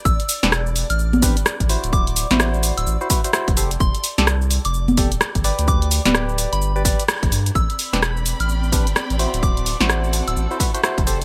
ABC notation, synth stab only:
X:1
M:4/4
L:1/16
Q:"Swing 16ths" 1/4=128
K:Am
V:1 name="Synth stab"
z3 [CDGB] z6 [CDGB] z3 [E^Fc]2- | [E^Fc]3 [EFc]6 [EFc] [EFB] [EFc] [EFc] z [GAc] z | z3 [GAd] z6 [GAd] z3 [GBd]2- | [GBd]3 [GBd]6 [GBd] [GBd] z4 z |
z3 [CDGB] z6 [CDGB] z3 [E^Fc]2- | [E^Fc]3 [EFc]6 [EFc] [EFB] [EFc] [EFc] z [GAc] z |]